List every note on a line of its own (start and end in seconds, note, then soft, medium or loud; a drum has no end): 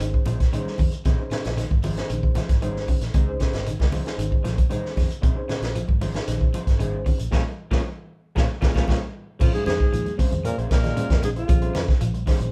0.00 0.20 G#1 loud
0.00 0.19 D#3 medium
0.00 0.24 C#4 medium
0.00 0.24 D#4 medium
0.00 0.24 G#4 medium
0.00 0.24 C5 medium
0.00 closed hi-hat medium
0.00 high conga soft
0.00 shekere medium
0.14 muted clean electric guitar stroke soft
0.14 kick medium
0.26 0.47 A#1 medium
0.26 0.45 F3 medium
0.26 0.39 C#4 medium
0.26 0.39 D#4 medium
0.26 0.39 G#4 medium
0.26 0.39 C5 medium
0.26 closed hi-hat soft
0.26 high conga medium
0.26 shekere medium
0.40 muted clean electric guitar stroke soft
0.40 kick medium
0.40 snare soft
0.40 closed hi-hat medium
0.40 shekere soft
0.53 0.72 D#3 medium
0.53 0.68 C#4 medium
0.53 0.90 C#4 medium
0.53 0.68 D#4 medium
0.53 0.90 D#4 medium
0.53 0.69 G#4 medium
0.53 0.90 G#4 medium
0.53 0.69 C5 medium
0.53 0.91 C5 medium
0.53 closed hi-hat medium
0.53 high conga medium
0.53 shekere medium
0.65 snare soft
0.65 high conga medium
0.78 0.89 F2 medium
0.78 0.98 C#3 medium
0.78 muted clean electric guitar stroke soft
0.78 kick medium
0.78 open hi-hat medium
0.78 low conga medium
0.78 shekere soft
0.92 muted clean electric guitar stroke soft
0.92 closed hi-hat soft
0.92 shekere medium
1.05 1.16 A#1 loud
1.05 1.24 C3 medium
1.05 1.21 C#4 medium
1.05 1.21 D#4 medium
1.05 1.21 G#4 medium
1.05 1.21 C5 medium
1.05 kick medium
1.05 snare soft
1.05 closed hi-hat medium
1.05 high conga soft
1.05 low conga medium
1.05 shekere medium
1.19 1.63 C#4 medium
1.19 1.63 D#4 medium
1.19 1.63 G#4 medium
1.19 1.63 C5 loud
1.31 1.50 C#3 medium
1.31 1.44 C#4 medium
1.31 1.45 D#4 medium
1.31 1.44 G#4 medium
1.31 1.44 C5 medium
1.31 muted fingered electric bass stroke soft
1.31 snare medium
1.31 closed hi-hat soft
1.31 shekere medium
1.44 1.65 A#1 medium
1.44 muted clean electric guitar stroke soft
1.44 snare medium
1.44 closed hi-hat soft
1.44 shekere soft
1.56 1.76 D#3 medium
1.56 muted clean electric guitar stroke soft
1.56 snare soft
1.56 closed hi-hat medium
1.56 high conga soft
1.56 shekere medium
1.71 2.01 G#1 medium
1.71 muted clean electric guitar stroke soft
1.71 kick medium
1.71 high conga medium
1.83 2.03 F3 medium
1.83 1.97 C#4 medium
1.83 1.97 D#4 medium
1.83 1.96 G#4 medium
1.83 1.96 C5 medium
1.83 open hi-hat medium
1.83 high conga medium
1.83 low conga medium
1.83 shekere medium
1.97 2.33 C#4 medium
1.97 2.34 D#4 medium
1.97 2.34 G#4 medium
1.97 2.34 C5 medium
1.97 muted clean electric guitar stroke soft
1.97 snare medium
1.97 closed hi-hat soft
1.97 shekere soft
2.10 2.41 A#1 medium
2.10 2.29 D#3 medium
2.10 closed hi-hat medium
2.10 high conga soft
2.10 shekere medium
2.23 muted clean electric guitar stroke soft
2.23 kick medium
2.35 2.55 F3 medium
2.35 2.49 C#4 medium
2.35 2.48 D#4 medium
2.35 2.48 G#4 medium
2.35 2.48 C5 medium
2.35 snare soft
2.35 closed hi-hat medium
2.35 high conga medium
2.35 low conga medium
2.35 shekere medium
2.49 2.90 G#1 medium
2.49 muted clean electric guitar stroke soft
2.49 kick medium
2.49 snare soft
2.49 closed hi-hat medium
2.49 shekere soft
2.61 2.81 D#3 medium
2.61 2.78 C#4 medium
2.61 2.99 C#4 medium
2.61 2.99 D#4 medium
2.61 2.78 D#4 medium
2.61 2.99 G#4 medium
2.61 2.78 G#4 medium
2.61 2.78 C5 medium
2.61 3.00 C5 medium
2.61 closed hi-hat medium
2.61 high conga medium
2.61 shekere medium
2.76 snare soft
2.88 3.07 C#3 medium
2.88 muted clean electric guitar stroke soft
2.88 kick medium
2.88 open hi-hat medium
2.88 low conga medium
2.88 shekere soft
3.01 3.11 A#1 medium
3.01 muted clean electric guitar stroke soft
3.01 snare soft
3.01 closed hi-hat soft
3.01 shekere medium
3.14 3.35 C#2 medium
3.14 3.33 C3 medium
3.14 3.30 D#4 medium
3.14 3.30 G#4 loud
3.14 3.31 C5 medium
3.14 muted clean electric guitar stroke medium
3.14 kick medium
3.14 closed hi-hat medium
3.14 high conga soft
3.14 low conga medium
3.14 shekere medium
3.28 3.72 C#4 medium
3.28 3.72 D#4 medium
3.28 3.72 G#4 medium
3.28 3.72 C5 medium
3.40 3.60 C#3 medium
3.40 3.54 C#4 medium
3.40 3.53 D#4 medium
3.40 3.53 G#4 medium
3.40 3.52 C5 medium
3.40 kick medium
3.40 snare medium
3.40 closed hi-hat soft
3.40 shekere medium
3.53 3.74 G#1 medium
3.53 muted clean electric guitar stroke soft
3.53 snare medium
3.53 closed hi-hat soft
3.53 shekere soft
3.66 3.85 D#3 medium
3.66 muted clean electric guitar stroke soft
3.66 closed hi-hat medium
3.66 high conga soft
3.66 shekere medium
3.79 4.00 C#2 medium
3.79 muted clean electric guitar stroke soft
3.79 kick medium
3.79 snare medium
3.79 high conga medium
3.92 4.11 F3 medium
3.92 4.06 C#4 medium
3.92 4.05 D#4 medium
3.92 4.04 G#4 medium
3.92 4.04 C5 medium
3.92 open hi-hat medium
3.92 high conga medium
3.92 low conga medium
3.92 shekere medium
4.05 4.43 C#4 medium
4.05 4.43 D#4 medium
4.05 4.43 G#4 medium
4.05 4.44 C5 medium
4.05 muted clean electric guitar stroke soft
4.05 snare medium
4.05 closed hi-hat soft
4.05 shekere soft
4.18 4.39 G#1 loud
4.18 4.38 D#3 medium
4.18 closed hi-hat medium
4.18 high conga soft
4.18 shekere medium
4.31 muted clean electric guitar stroke soft
4.31 kick medium
4.43 4.65 A#1 medium
4.43 4.63 F3 medium
4.43 4.58 C#4 medium
4.43 4.56 D#4 medium
4.43 4.56 G#4 medium
4.43 4.56 C5 medium
4.43 snare soft
4.43 closed hi-hat medium
4.43 high conga medium
4.43 shekere medium
4.57 muted clean electric guitar stroke soft
4.57 kick medium
4.57 closed hi-hat medium
4.57 shekere soft
4.69 4.90 D#3 medium
4.69 4.86 C#4 medium
4.69 5.08 C#4 medium
4.69 4.86 D#4 medium
4.69 5.08 D#4 medium
4.69 4.87 G#4 medium
4.69 5.09 G#4 medium
4.69 4.87 C5 medium
4.69 5.09 C5 medium
4.69 closed hi-hat medium
4.69 high conga medium
4.69 shekere medium
4.84 snare soft
4.84 high conga medium
4.96 5.08 F2 medium
4.96 5.16 C#3 medium
4.96 muted clean electric guitar stroke soft
4.96 kick medium
4.96 snare soft
4.96 open hi-hat medium
4.96 low conga medium
4.96 shekere soft
5.08 muted clean electric guitar stroke medium
5.08 closed hi-hat soft
5.08 shekere medium
5.22 5.34 A#1 medium
5.22 5.42 C3 medium
5.22 5.38 C#4 medium
5.22 5.39 D#4 medium
5.22 5.39 G#4 medium
5.22 5.39 C5 medium
5.22 kick medium
5.22 closed hi-hat medium
5.22 high conga soft
5.22 shekere medium
5.36 5.80 C#4 medium
5.36 5.80 D#4 medium
5.36 5.81 G#4 medium
5.36 5.81 C5 loud
5.48 5.68 C#3 medium
5.48 5.62 C#4 medium
5.48 5.61 D#4 medium
5.48 5.61 G#4 medium
5.48 5.60 C5 medium
5.48 muted fingered electric bass stroke soft
5.48 snare medium
5.48 closed hi-hat soft
5.48 shekere medium
5.61 5.82 A#1 medium
5.61 muted clean electric guitar stroke soft
5.61 snare medium
5.61 closed hi-hat medium
5.61 shekere soft
5.74 5.94 F3 medium
5.74 muted clean electric guitar stroke soft
5.74 closed hi-hat medium
5.74 high conga soft
5.74 shekere medium
5.88 6.19 G#1 medium
5.88 muted clean electric guitar stroke soft
5.88 kick medium
5.88 high conga medium
6.01 6.20 F3 medium
6.01 6.15 C#4 medium
6.01 6.15 D#4 medium
6.01 6.14 G#4 medium
6.01 6.15 C5 medium
6.01 open hi-hat medium
6.01 high conga medium
6.01 low conga medium
6.01 shekere medium
6.14 6.52 C#4 medium
6.14 6.52 D#4 medium
6.14 6.52 G#4 medium
6.14 6.52 C5 medium
6.14 muted clean electric guitar stroke soft
6.14 snare medium
6.14 closed hi-hat soft
6.14 shekere soft
6.27 6.59 A#1 medium
6.27 6.47 D#3 medium
6.27 snare soft
6.27 closed hi-hat medium
6.27 high conga soft
6.27 shekere medium
6.41 muted clean electric guitar stroke soft
6.41 kick medium
6.54 6.73 F3 medium
6.54 6.67 C#4 medium
6.54 6.66 D#4 medium
6.54 6.66 G#4 medium
6.54 6.66 C5 medium
6.54 closed hi-hat soft
6.54 high conga medium
6.54 shekere medium
6.67 7.08 G#1 medium
6.67 muted clean electric guitar stroke soft
6.67 kick medium
6.67 snare soft
6.67 closed hi-hat soft
6.67 shekere soft
6.79 6.98 D#3 medium
6.79 6.95 C#4 medium
6.79 7.17 C#4 medium
6.79 6.96 D#4 medium
6.79 7.17 D#4 medium
6.79 6.96 G#4 medium
6.79 7.17 G#4 medium
6.79 6.96 C5 medium
6.79 7.17 C5 medium
6.79 closed hi-hat medium
6.79 high conga medium
6.79 shekere medium
6.94 high conga medium
7.05 7.25 C#3 medium
7.05 muted clean electric guitar stroke soft
7.05 kick medium
7.05 open hi-hat medium
7.05 low conga medium
7.05 shekere soft
7.18 7.30 A#1 medium
7.18 muted clean electric guitar stroke soft
7.18 closed hi-hat soft
7.18 shekere medium
7.31 7.42 A#1 medium
7.31 7.41 A#2 medium
7.31 7.41 C#3 medium
7.31 7.41 F3 medium
7.31 7.40 F4 medium
7.31 7.41 F4 medium
7.31 7.40 G#4 medium
7.31 7.41 G#4 medium
7.31 7.40 A#4 medium
7.31 7.41 A#4 medium
7.31 kick medium
7.31 snare medium
7.31 high conga medium
7.31 shekere medium
7.71 7.81 A#1 medium
7.71 7.80 A#2 medium
7.71 7.80 C#3 medium
7.71 7.80 F3 medium
7.71 7.80 F4 medium
7.71 7.80 G#4 medium
7.71 7.80 A#4 medium
7.71 kick medium
7.71 snare medium
7.71 high conga medium
7.71 shekere medium
8.35 8.47 A#1 loud
8.35 8.45 A#2 medium
8.35 8.45 C#3 medium
8.35 8.45 F3 medium
8.35 8.45 F4 medium
8.35 8.44 G#4 medium
8.35 8.45 G#4 medium
8.35 8.45 A#4 medium
8.35 kick medium
8.35 snare medium
8.35 high conga medium
8.35 shekere medium
8.61 8.72 A#1 medium
8.61 8.71 A#2 medium
8.61 8.71 C#3 medium
8.61 8.70 F3 medium
8.61 8.71 F4 medium
8.61 8.72 F4 medium
8.61 8.71 G#4 medium
8.61 8.72 G#4 medium
8.61 8.70 A#4 medium
8.61 8.71 A#4 medium
8.61 kick medium
8.61 snare medium
8.61 high conga medium
8.61 shekere medium
8.74 8.85 A#1 medium
8.74 8.84 A#2 medium
8.74 8.84 C#3 medium
8.74 8.84 F3 medium
8.74 8.83 F4 loud
8.74 8.84 F4 medium
8.74 8.84 G#4 loud
8.74 8.84 G#4 medium
8.74 8.84 A#4 medium
8.74 kick medium
8.74 snare medium
8.74 high conga loud
8.74 shekere medium
8.87 8.99 A#1 medium
8.87 8.97 A#2 medium
8.87 8.97 C#3 medium
8.87 8.97 F3 medium
8.87 8.96 F4 medium
8.87 8.97 F4 medium
8.87 8.97 G#4 loud
8.87 8.97 G#4 medium
8.87 8.97 A#4 medium
8.87 kick medium
8.87 snare medium
8.87 high conga loud
8.87 shekere medium
9.39 9.51 A#1 medium
9.39 9.51 F2 medium
9.39 9.59 F3 loud
9.39 9.84 C#4 medium
9.39 9.53 C#4 medium
9.39 9.53 F4 medium
9.39 9.54 F4 medium
9.39 9.84 G#4 medium
9.39 9.53 G#4 medium
9.39 9.85 C5 medium
9.39 9.52 C5 medium
9.39 kick medium
9.39 crash medium
9.39 low conga medium
9.39 shekere medium
9.52 9.63 G#2 medium
9.52 9.65 C#4 medium
9.52 9.66 F4 medium
9.52 9.66 G#4 medium
9.52 9.65 G#4 loud
9.52 9.66 C5 medium
9.52 closed hi-hat soft
9.52 high conga medium
9.52 shekere soft
9.63 9.77 F2 loud
9.63 10.13 G#2 medium
9.63 9.86 C#3 medium
9.63 10.15 G#4 loud
9.63 muted clean electric guitar stroke soft
9.63 high conga medium
9.67 snare medium
9.67 closed hi-hat soft
9.67 shekere medium
9.80 muted clean electric guitar stroke soft
9.80 kick medium
9.80 shekere soft
9.93 10.13 D#2 medium
9.93 10.11 F3 medium
9.93 closed hi-hat medium
9.93 shekere medium
10.05 muted clean electric guitar stroke soft
10.05 closed hi-hat soft
10.05 high conga medium
10.05 shekere soft
10.17 10.38 C3 medium
10.17 10.55 C#4 medium
10.17 10.32 C#4 medium
10.17 10.31 F4 medium
10.17 10.55 G#4 medium
10.17 10.31 G#4 medium
10.17 10.55 C5 medium
10.17 10.30 C5 medium
10.17 kick medium
10.17 open hi-hat medium
10.17 high conga medium
10.17 shekere medium
10.31 10.52 F2 medium
10.31 muted clean electric guitar stroke soft
10.31 closed hi-hat soft
10.31 low conga medium
10.31 shekere soft
10.44 10.56 A#2 loud
10.44 10.57 A#4 medium
10.44 muted clean electric guitar stroke soft
10.44 closed hi-hat medium
10.44 shekere medium
10.58 10.68 A#1 medium
10.58 10.70 C#4 soft
10.58 10.70 F4 medium
10.58 10.70 G#4 medium
10.58 10.70 C5 medium
10.58 closed hi-hat soft
10.58 shekere soft
10.70 10.91 A#1 medium
10.70 11.19 A#2 medium
10.70 10.90 C3 medium
10.70 11.20 A#4 medium
10.70 muted clean electric guitar stroke soft
10.70 kick medium
10.70 snare medium
10.70 closed hi-hat medium
10.70 shekere medium
10.82 11.19 C#4 medium
10.82 11.20 G#4 medium
10.82 11.20 D#5 medium
10.82 snare soft
10.82 closed hi-hat soft
10.82 low conga medium
10.82 shekere soft
10.97 11.15 C#3 medium
10.97 11.10 C#4 medium
10.97 11.09 F4 medium
10.97 11.09 G#4 medium
10.97 11.09 C5 medium
10.97 closed hi-hat medium
10.97 high conga medium
10.97 shekere medium
11.10 11.20 F2 loud
11.10 muted clean electric guitar stroke soft
11.10 kick medium
11.10 snare medium
11.10 closed hi-hat soft
11.10 shekere soft
11.23 11.43 A#1 medium
11.23 11.29 G#2 medium
11.23 11.41 C#3 medium
11.23 11.30 G#4 medium
11.23 muted clean electric guitar stroke soft
11.23 closed hi-hat medium
11.23 high conga loud
11.23 shekere medium
11.36 11.85 F2 medium
11.36 11.52 F4 medium
11.36 11.86 F4 medium
11.36 11.52 G#4 soft
11.36 11.52 C5 medium
11.36 closed hi-hat soft
11.36 shekere soft
11.47 11.69 A#1 medium
11.47 11.68 F3 medium
11.47 11.92 C#4 medium
11.47 11.92 G#4 medium
11.47 11.93 C5 medium
11.47 kick medium
11.47 closed hi-hat medium
11.47 low conga medium
11.47 shekere medium
11.62 11.73 C#4 medium
11.62 11.74 G#4 medium
11.62 11.74 C5 medium
11.62 closed hi-hat soft
11.62 high conga medium
11.62 shekere soft
11.74 11.86 F2 medium
11.74 11.94 C#3 medium
11.74 muted clean electric guitar stroke soft
11.74 snare medium
11.74 closed hi-hat soft
11.74 high conga medium
11.74 shekere medium
11.87 muted clean electric guitar stroke soft
11.87 kick medium
11.87 snare soft
11.87 shekere soft
12.01 12.32 A#1 medium
12.01 12.20 F3 medium
12.01 closed hi-hat medium
12.01 shekere medium
12.14 muted clean electric guitar stroke soft
12.14 closed hi-hat soft
12.14 high conga medium
12.14 shekere soft
12.26 12.46 D#3 medium
12.26 12.40 C#4 medium
12.26 12.52 C#4 medium
12.26 12.40 F4 medium
12.26 12.39 G#4 medium
12.26 12.52 G#4 medium
12.26 12.39 C5 medium
12.26 12.52 C5 loud
12.26 kick medium
12.26 snare soft
12.26 open hi-hat medium
12.26 high conga medium
12.26 shekere medium
12.40 12.50 A#1 medium
12.40 muted clean electric guitar stroke soft
12.40 closed hi-hat soft
12.40 shekere soft